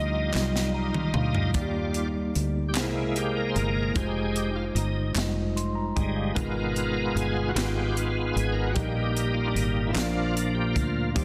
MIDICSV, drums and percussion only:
0, 0, Header, 1, 2, 480
1, 0, Start_track
1, 0, Key_signature, -3, "major"
1, 0, Tempo, 801068
1, 929, Time_signature, 6, 3, 24, 8
1, 6739, End_track
2, 0, Start_track
2, 0, Title_t, "Drums"
2, 201, Note_on_c, 9, 39, 85
2, 216, Note_on_c, 9, 38, 52
2, 261, Note_off_c, 9, 39, 0
2, 276, Note_off_c, 9, 38, 0
2, 333, Note_on_c, 9, 38, 54
2, 393, Note_off_c, 9, 38, 0
2, 566, Note_on_c, 9, 47, 62
2, 626, Note_off_c, 9, 47, 0
2, 682, Note_on_c, 9, 45, 83
2, 742, Note_off_c, 9, 45, 0
2, 806, Note_on_c, 9, 43, 82
2, 866, Note_off_c, 9, 43, 0
2, 924, Note_on_c, 9, 42, 67
2, 927, Note_on_c, 9, 36, 98
2, 984, Note_off_c, 9, 42, 0
2, 987, Note_off_c, 9, 36, 0
2, 1164, Note_on_c, 9, 42, 43
2, 1224, Note_off_c, 9, 42, 0
2, 1411, Note_on_c, 9, 42, 46
2, 1471, Note_off_c, 9, 42, 0
2, 1646, Note_on_c, 9, 39, 78
2, 1651, Note_on_c, 9, 42, 76
2, 1659, Note_on_c, 9, 38, 98
2, 1706, Note_off_c, 9, 39, 0
2, 1711, Note_off_c, 9, 42, 0
2, 1719, Note_off_c, 9, 38, 0
2, 1893, Note_on_c, 9, 42, 43
2, 1953, Note_off_c, 9, 42, 0
2, 2133, Note_on_c, 9, 42, 42
2, 2193, Note_off_c, 9, 42, 0
2, 2370, Note_on_c, 9, 42, 67
2, 2371, Note_on_c, 9, 36, 91
2, 2430, Note_off_c, 9, 42, 0
2, 2431, Note_off_c, 9, 36, 0
2, 2611, Note_on_c, 9, 42, 42
2, 2671, Note_off_c, 9, 42, 0
2, 2852, Note_on_c, 9, 42, 45
2, 2912, Note_off_c, 9, 42, 0
2, 3088, Note_on_c, 9, 39, 79
2, 3096, Note_on_c, 9, 42, 77
2, 3104, Note_on_c, 9, 38, 91
2, 3148, Note_off_c, 9, 39, 0
2, 3156, Note_off_c, 9, 42, 0
2, 3164, Note_off_c, 9, 38, 0
2, 3339, Note_on_c, 9, 42, 48
2, 3399, Note_off_c, 9, 42, 0
2, 3575, Note_on_c, 9, 36, 76
2, 3577, Note_on_c, 9, 42, 38
2, 3635, Note_off_c, 9, 36, 0
2, 3637, Note_off_c, 9, 42, 0
2, 3813, Note_on_c, 9, 36, 96
2, 3813, Note_on_c, 9, 42, 68
2, 3873, Note_off_c, 9, 36, 0
2, 3873, Note_off_c, 9, 42, 0
2, 4052, Note_on_c, 9, 42, 43
2, 4112, Note_off_c, 9, 42, 0
2, 4295, Note_on_c, 9, 42, 44
2, 4355, Note_off_c, 9, 42, 0
2, 4534, Note_on_c, 9, 42, 84
2, 4538, Note_on_c, 9, 39, 80
2, 4542, Note_on_c, 9, 38, 100
2, 4594, Note_off_c, 9, 42, 0
2, 4597, Note_off_c, 9, 39, 0
2, 4602, Note_off_c, 9, 38, 0
2, 4776, Note_on_c, 9, 42, 47
2, 4836, Note_off_c, 9, 42, 0
2, 5015, Note_on_c, 9, 42, 43
2, 5075, Note_off_c, 9, 42, 0
2, 5247, Note_on_c, 9, 42, 67
2, 5250, Note_on_c, 9, 36, 102
2, 5307, Note_off_c, 9, 42, 0
2, 5310, Note_off_c, 9, 36, 0
2, 5492, Note_on_c, 9, 42, 44
2, 5552, Note_off_c, 9, 42, 0
2, 5731, Note_on_c, 9, 42, 46
2, 5791, Note_off_c, 9, 42, 0
2, 5965, Note_on_c, 9, 39, 81
2, 5972, Note_on_c, 9, 42, 79
2, 5981, Note_on_c, 9, 38, 104
2, 6025, Note_off_c, 9, 39, 0
2, 6032, Note_off_c, 9, 42, 0
2, 6040, Note_off_c, 9, 38, 0
2, 6213, Note_on_c, 9, 42, 45
2, 6273, Note_off_c, 9, 42, 0
2, 6446, Note_on_c, 9, 36, 74
2, 6449, Note_on_c, 9, 42, 40
2, 6506, Note_off_c, 9, 36, 0
2, 6509, Note_off_c, 9, 42, 0
2, 6686, Note_on_c, 9, 36, 93
2, 6688, Note_on_c, 9, 42, 68
2, 6739, Note_off_c, 9, 36, 0
2, 6739, Note_off_c, 9, 42, 0
2, 6739, End_track
0, 0, End_of_file